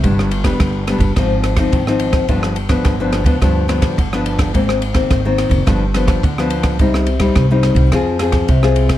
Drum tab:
RD |x-xxx-xxx-xxx-xx|x-xxx-xxx-xxx-xx|x-xxx-xxx-xxx-xx|x-xxx-xxx-xxx-xx|
SD |-r-rr-r-r-rr-r-r|-r-rr-r-r-rr-r-r|-r-rr-r-r-rr-r-r|-r-rr-r-r-rr-r-r|
BD |o--oo--oo--oo--o|o--oo--oo--oo--o|o--oo--oo--oo--o|o--oo--oo--oo--o|